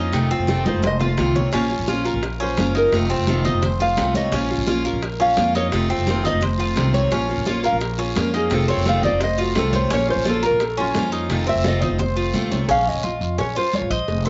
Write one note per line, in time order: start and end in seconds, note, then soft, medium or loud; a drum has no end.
0.00 0.12 F2 loud
0.00 0.13 F3 medium
0.00 0.13 A#3 medium
0.00 0.14 C#4 medium
0.00 0.30 D#4 medium
0.00 0.14 F4 medium
0.13 0.38 F1 loud
0.13 0.30 C3 medium
0.13 0.30 D#3 medium
0.13 0.30 A3 medium
0.13 0.31 C4 medium
0.13 0.29 F4 medium
0.13 high bongo medium
0.13 high conga soft
0.30 0.48 A3 soft
0.30 0.65 C4 medium
0.30 0.48 C4 medium
0.30 0.47 F4 medium
0.30 high bongo soft
0.30 high conga soft
0.39 0.73 F1 medium
0.47 0.65 C3 medium
0.47 0.65 D#3 medium
0.47 0.65 A3 medium
0.47 0.65 C4 medium
0.47 0.64 F4 medium
0.47 high bongo medium
0.47 high conga loud
0.65 0.82 A3 soft
0.65 0.82 C4 medium
0.65 0.83 D#4 medium
0.65 0.82 F4 medium
0.65 0.84 C5 loud
0.65 high bongo soft
0.65 high conga loud
0.74 1.16 F1 loud
0.82 1.00 C5 medium
0.82 muted steel-string acoustic guitar stroke medium
0.82 high bongo medium
0.82 high conga medium
0.87 0.96 D#5 loud
0.99 1.17 A3 soft
0.99 1.18 C4 soft
0.99 1.17 F4 medium
0.99 1.34 F4 medium
0.99 low conga medium
1.17 1.51 C2 loud
1.17 1.52 C3 medium
1.17 1.51 D#3 medium
1.17 1.52 A3 medium
1.17 1.53 C4 medium
1.17 1.53 F4 medium
1.17 high bongo medium
1.17 low bongo medium
1.17 low conga medium
1.35 1.53 C#5 medium
1.35 high bongo soft
1.35 low conga loud
1.52 1.78 A#1 loud
1.52 1.69 F3 medium
1.52 1.70 A#3 medium
1.52 1.87 C#4 medium
1.52 1.70 C#4 medium
1.52 1.68 F4 medium
1.52 high bongo medium
1.52 high conga soft
1.52 long guiro medium
1.70 1.87 A#3 soft
1.70 1.87 C#4 soft
1.70 1.87 F4 medium
1.70 high bongo soft
1.70 high conga soft
1.79 2.12 A#1 loud
1.87 2.04 F3 medium
1.87 2.05 A#3 medium
1.87 2.05 C#4 medium
1.87 2.05 F4 medium
1.87 2.03 F4 medium
1.87 high bongo medium
1.87 high conga medium
1.87 short guiro medium
2.04 2.22 A#3 soft
2.04 2.22 C#4 soft
2.04 2.22 F4 medium
2.04 2.39 A#4 medium
2.04 high bongo soft
2.04 short guiro medium
2.14 2.56 A#1 medium
2.23 muted steel-string acoustic guitar stroke medium
2.23 high bongo medium
2.23 high conga soft
2.23 long guiro medium
2.40 2.56 A#3 soft
2.40 2.74 C#4 medium
2.40 2.57 C#4 soft
2.40 2.57 F4 soft
2.40 2.74 C5 medium
2.40 high conga soft
2.57 2.91 F#1 medium
2.57 2.92 F3 medium
2.57 2.92 A#3 medium
2.57 2.92 C#4 medium
2.57 2.93 F4 medium
2.57 high bongo medium
2.57 low bongo medium
2.57 high conga medium
2.57 short guiro medium
2.75 3.09 D#4 medium
2.75 2.93 A#4 loud
2.75 high bongo soft
2.75 high conga soft
2.75 short guiro medium
2.92 3.17 F1 loud
2.92 3.09 C3 medium
2.92 3.09 D#3 medium
2.92 3.10 A3 medium
2.92 3.10 C4 medium
2.92 3.09 F4 medium
2.92 high bongo medium
2.92 high conga soft
2.92 long guiro medium
3.10 3.28 A3 soft
3.10 3.44 C4 medium
3.10 3.27 C4 soft
3.10 3.27 F4 medium
3.10 high bongo soft
3.10 high conga soft
3.19 3.52 F1 loud
3.27 3.44 C3 medium
3.27 3.45 D#3 medium
3.27 3.45 A3 medium
3.27 3.45 C4 medium
3.27 3.44 F4 medium
3.27 high bongo medium
3.27 high conga loud
3.27 short guiro medium
3.44 3.62 A3 soft
3.44 3.62 C4 soft
3.44 3.62 D#4 medium
3.44 3.62 F4 medium
3.44 high bongo soft
3.44 high conga soft
3.44 low conga medium
3.44 short guiro medium
3.54 3.95 F1 loud
3.62 3.79 C5 medium
3.62 muted steel-string acoustic guitar stroke medium
3.62 high bongo medium
3.62 high conga soft
3.62 low conga medium
3.62 long guiro medium
3.80 3.97 A3 soft
3.80 3.97 C4 soft
3.80 3.97 F4 soft
3.80 4.14 F4 medium
3.80 4.13 F5 loud
3.80 high conga soft
3.97 4.31 C2 loud
3.97 4.31 C3 medium
3.97 4.31 D#3 medium
3.97 4.32 A3 medium
3.97 4.32 C4 medium
3.97 4.33 F4 medium
3.97 high bongo medium
3.97 low bongo medium
3.97 high conga medium
3.97 short guiro medium
4.14 4.32 C#5 medium
4.14 4.33 D#5 loud
4.14 high bongo soft
4.14 high conga medium
4.14 short guiro medium
4.32 4.57 A#1 loud
4.32 4.49 F3 medium
4.32 4.49 A#3 medium
4.32 4.66 C#4 medium
4.32 4.50 C#4 medium
4.32 4.49 F4 medium
4.32 high bongo medium
4.32 high conga soft
4.32 long guiro medium
4.50 4.66 A#3 soft
4.50 4.67 C#4 soft
4.50 4.67 F4 medium
4.50 high bongo soft
4.50 high conga soft
4.58 4.92 A#1 loud
4.66 4.84 F3 medium
4.66 4.84 A#3 medium
4.66 4.84 C#4 medium
4.66 4.84 F4 medium
4.66 4.83 F4 medium
4.66 high bongo medium
4.66 high conga medium
4.66 short guiro medium
4.84 5.01 A#3 soft
4.84 5.02 C#4 soft
4.84 5.01 F4 medium
4.84 5.19 A#4 medium
4.84 high bongo soft
4.84 short guiro medium
4.93 5.35 A#1 medium
5.02 muted steel-string acoustic guitar stroke medium
5.02 high bongo medium
5.02 high conga soft
5.02 long guiro medium
5.20 5.36 A#3 soft
5.20 5.54 C#4 medium
5.20 5.37 C#4 medium
5.20 5.36 F4 medium
5.20 5.53 F5 loud
5.20 high conga soft
5.36 5.70 F2 loud
5.36 5.71 F3 medium
5.36 5.71 A#3 medium
5.36 5.72 C#4 medium
5.36 5.72 F4 medium
5.36 high bongo medium
5.36 low bongo medium
5.36 high conga medium
5.36 short guiro medium
5.55 5.89 D#4 medium
5.55 5.66 C#5 loud
5.55 high bongo soft
5.55 high conga soft
5.55 short guiro medium
5.72 5.97 F1 loud
5.72 5.89 C3 medium
5.72 5.89 D#3 medium
5.72 5.89 A3 medium
5.72 5.89 C4 medium
5.72 5.88 F4 medium
5.72 high bongo medium
5.72 high conga soft
5.72 long guiro medium
5.89 6.06 A3 soft
5.89 6.24 C4 medium
5.89 6.07 C4 medium
5.89 6.06 F4 medium
5.89 high bongo soft
5.89 high conga soft
5.98 6.31 F1 medium
6.06 6.23 C3 medium
6.06 6.24 D#3 medium
6.06 6.24 A3 medium
6.06 6.24 C4 medium
6.06 6.23 F4 medium
6.06 6.25 C5 medium
6.06 high bongo medium
6.06 high conga loud
6.06 short guiro medium
6.24 6.40 A3 soft
6.24 6.41 C4 medium
6.24 6.42 D#4 medium
6.24 6.41 F4 medium
6.24 6.42 D#5 medium
6.24 high bongo soft
6.24 high conga soft
6.24 low conga medium
6.24 short guiro medium
6.32 6.74 F1 medium
6.41 6.59 C5 medium
6.41 muted steel-string acoustic guitar stroke medium
6.41 high bongo medium
6.41 high conga soft
6.41 low conga medium
6.41 long guiro medium
6.58 6.75 A3 soft
6.58 6.76 C4 soft
6.58 6.75 F4 medium
6.58 6.93 F4 medium
6.58 high conga soft
6.75 7.10 C2 loud
6.75 7.10 C3 medium
6.75 7.10 D#3 medium
6.75 7.11 A3 medium
6.75 7.11 C4 medium
6.75 7.11 F4 medium
6.75 high bongo medium
6.75 low bongo medium
6.75 high conga medium
6.75 short guiro medium
6.93 7.11 C#5 medium
6.93 high bongo soft
6.93 high conga medium
6.93 short guiro medium
7.10 7.36 A#1 loud
7.10 7.28 F3 medium
7.10 7.28 A#3 medium
7.10 7.46 C#4 medium
7.10 7.28 C#4 medium
7.10 7.27 F4 medium
7.10 high bongo medium
7.10 high conga soft
7.10 long guiro medium
7.28 7.45 A#3 soft
7.28 7.45 C#4 soft
7.28 7.45 F4 medium
7.28 high bongo soft
7.28 high conga soft
7.38 7.71 A#1 medium
7.45 7.63 F3 medium
7.45 7.63 A#3 medium
7.45 7.63 C#4 medium
7.45 7.64 F4 medium
7.45 7.62 F4 medium
7.45 high bongo medium
7.45 high conga medium
7.45 short guiro medium
7.50 7.65 C#5 medium
7.63 7.79 A#3 soft
7.63 7.80 C#4 soft
7.63 7.80 F4 medium
7.63 7.98 A#4 medium
7.63 7.76 F5 loud
7.63 high bongo soft
7.63 short guiro medium
7.72 8.14 A#1 loud
7.80 muted steel-string acoustic guitar stroke medium
7.80 high bongo medium
7.80 high conga soft
7.80 long guiro medium
7.98 8.15 A#3 soft
7.98 8.33 C#4 medium
7.98 8.16 C#4 medium
7.98 8.15 F4 medium
7.98 high conga soft
8.15 8.49 F2 loud
8.15 8.50 F3 medium
8.15 8.50 A#3 medium
8.15 8.51 C#4 medium
8.15 8.51 F4 medium
8.15 high bongo medium
8.15 low bongo medium
8.15 high conga medium
8.15 short guiro medium
8.20 8.35 A#4 medium
8.33 8.68 D#4 medium
8.33 8.52 G#4 medium
8.33 high bongo soft
8.33 high conga soft
8.33 short guiro medium
8.50 8.76 F1 loud
8.50 8.67 C3 medium
8.50 8.68 D#3 medium
8.50 8.68 A3 medium
8.50 8.68 C4 medium
8.50 8.67 F4 medium
8.50 high bongo medium
8.50 high conga soft
8.50 long guiro medium
8.54 8.70 A4 medium
8.68 8.86 A3 soft
8.68 9.02 C4 medium
8.68 8.86 C4 medium
8.68 8.85 F4 medium
8.68 8.86 C#5 medium
8.68 high bongo soft
8.68 high conga soft
8.77 9.10 F1 medium
8.86 9.02 C3 medium
8.86 9.03 D#3 medium
8.86 9.03 A3 medium
8.86 9.03 C4 medium
8.86 9.02 F4 medium
8.86 9.04 F5 loud
8.86 high bongo medium
8.86 high conga loud
8.86 short guiro medium
9.03 9.20 A3 soft
9.03 9.21 C4 soft
9.03 9.20 D#4 medium
9.03 9.20 F4 medium
9.03 9.21 D5 loud
9.03 high bongo soft
9.03 high conga soft
9.03 low conga medium
9.03 short guiro medium
9.12 9.53 F1 medium
9.20 9.38 C5 medium
9.20 9.39 D#5 loud
9.20 muted steel-string acoustic guitar stroke medium
9.20 high bongo medium
9.20 high conga soft
9.20 long guiro medium
9.38 9.56 A3 soft
9.38 9.55 C4 soft
9.38 9.55 F4 medium
9.38 9.72 F4 medium
9.38 9.56 F#4 medium
9.38 high conga soft
9.55 9.89 C2 loud
9.55 9.90 C3 medium
9.55 9.90 D#3 medium
9.55 9.90 A3 medium
9.55 9.91 C4 medium
9.55 9.91 F4 medium
9.55 9.74 A4 medium
9.55 high bongo medium
9.55 low bongo medium
9.55 high conga medium
9.55 short guiro medium
9.73 9.91 C5 medium
9.73 9.90 C#5 medium
9.73 high bongo soft
9.73 high conga medium
9.73 short guiro medium
9.90 10.15 A#1 loud
9.90 10.07 F3 medium
9.90 10.08 A#3 medium
9.90 10.24 C#4 medium
9.90 10.08 C#4 medium
9.90 10.07 F4 medium
9.90 10.09 C#5 loud
9.90 high bongo medium
9.90 high conga soft
9.90 long guiro medium
10.08 10.24 A#3 soft
10.08 10.25 C#4 soft
10.08 10.25 F4 medium
10.08 10.26 C5 loud
10.08 high bongo soft
10.08 high conga soft
10.16 10.49 A#1 loud
10.24 10.42 F3 medium
10.24 10.42 A#3 medium
10.24 10.42 C#4 medium
10.24 10.42 F4 medium
10.24 10.41 F4 medium
10.24 high bongo medium
10.24 high conga medium
10.24 short guiro medium
10.29 10.44 A4 medium
10.42 10.60 A#3 soft
10.42 10.60 C#4 soft
10.42 10.59 F4 medium
10.42 10.76 A#4 medium
10.42 10.64 A#4 loud
10.42 high bongo soft
10.42 short guiro medium
10.51 10.92 A#1 loud
10.60 muted steel-string acoustic guitar stroke medium
10.60 high bongo medium
10.60 high conga soft
10.60 long guiro medium
10.64 10.79 A4 medium
10.77 10.94 A#3 soft
10.77 11.11 C#4 medium
10.77 10.95 C#4 soft
10.77 10.94 F4 medium
10.77 10.90 F4 loud
10.77 high conga soft
10.95 11.28 F2 loud
10.95 11.29 F3 medium
10.95 11.29 A#3 medium
10.95 11.30 C#4 medium
10.95 11.30 F4 medium
10.95 high bongo medium
10.95 low bongo medium
10.95 high conga medium
10.95 short guiro medium
11.12 11.46 D#4 medium
11.12 high bongo soft
11.12 high conga soft
11.12 short guiro medium
11.29 11.54 F1 loud
11.29 11.46 C3 medium
11.29 11.47 D#3 medium
11.29 11.47 A3 medium
11.29 11.46 C4 medium
11.29 11.45 F4 medium
11.29 high bongo medium
11.29 high conga soft
11.29 long guiro medium
11.46 11.64 A3 soft
11.46 11.81 C4 medium
11.46 11.64 C4 soft
11.46 11.63 F4 medium
11.46 11.65 E5 loud
11.46 high bongo soft
11.46 high conga soft
11.55 11.89 F1 loud
11.64 11.81 C3 medium
11.64 11.81 D#3 medium
11.64 11.81 A3 medium
11.64 11.81 C4 medium
11.64 11.80 F4 medium
11.64 high bongo medium
11.64 high conga loud
11.64 short guiro medium
11.68 11.84 D#5 medium
11.81 11.98 A3 soft
11.81 11.98 C4 soft
11.81 11.99 D#4 medium
11.81 11.98 F4 soft
11.81 12.61 C5 loud
11.81 high bongo soft
11.81 high conga soft
11.81 low conga medium
11.81 short guiro medium
11.90 12.32 F1 medium
11.99 12.16 C5 medium
11.99 muted steel-string acoustic guitar stroke medium
11.99 high bongo medium
11.99 high conga soft
11.99 low conga medium
11.99 long guiro medium
12.16 12.33 A3 soft
12.16 12.34 C4 soft
12.16 12.33 F4 soft
12.16 12.50 F4 medium
12.16 high conga soft
12.33 12.49 D#2 medium
12.33 12.68 C3 medium
12.33 12.68 D#3 medium
12.33 12.68 A3 medium
12.33 12.69 C4 medium
12.33 12.69 F4 medium
12.33 high conga loud
12.33 short guiro medium
12.51 12.67 C2 medium
12.51 12.68 C#5 medium
12.51 low bongo medium
12.51 high conga medium
12.51 short guiro medium
12.68 12.93 A#1 loud
12.68 13.03 C#4 medium
12.68 12.88 F5 loud
12.68 cowbell loud
12.68 long guiro medium
12.87 13.40 D#5 loud
12.87 high conga soft
12.95 13.20 A#1 medium
13.03 13.37 F4 medium
13.03 cowbell medium
13.03 high conga medium
13.03 short guiro medium
13.21 13.37 F2 medium
13.21 short guiro medium
13.38 13.55 A#1 loud
13.38 13.55 C#4 medium
13.38 13.57 C#5 loud
13.38 cowbell loud
13.38 high conga soft
13.38 long guiro medium
13.56 13.90 F4 medium
13.56 13.75 C5 medium
13.56 high conga soft
13.73 13.92 C#5 loud
13.73 cowbell medium
13.73 high conga medium
13.73 short guiro medium
13.82 13.90 A1 medium
13.90 13.99 A#1 loud
13.90 14.27 C5 loud
13.90 14.24 D#5 medium
13.90 high conga soft
13.90 short guiro medium
14.08 14.29 F1 loud
14.08 cowbell loud
14.08 high conga soft
14.08 long guiro medium
14.25 14.29 C5 medium
14.25 high conga soft